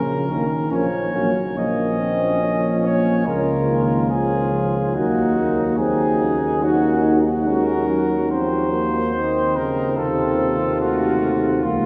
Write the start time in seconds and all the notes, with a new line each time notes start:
Already playing: C#3 A#4
0.28 A#1 D#3 A#3 C#4
0.71 A#1 F3 A#3 C#4 C#5
1.14 A#1 F#3 A#3 C#4
1.56 A#1 F3 A#3 C#4 D#5
2.00 C4
2.43 C#4
2.85 A#3 C#5
3.26 C#2 C#3 A#3 F4 A#4
3.68 D#3
4.10 F3 C#4 F4 G#4
4.53 F3
4.94 D#2 F#3 A#3 D#4 F#4
5.37 A#3
5.78 C4 D#4 G#4
6.23 C#4
6.62 A#3 D#4 F#4
7.04 F#4
7.47 G#3 C#4 A#4
7.88 F#3
8.30 F3 C4 C5
8.71 A#3
9.14 D#3 C4 D#4
9.56 C#3 A#4
9.97 D#2 C3 C4 F4 A4
10.41 C3
10.81 A3 F#4
11.63 C#2 F3 A#3 F4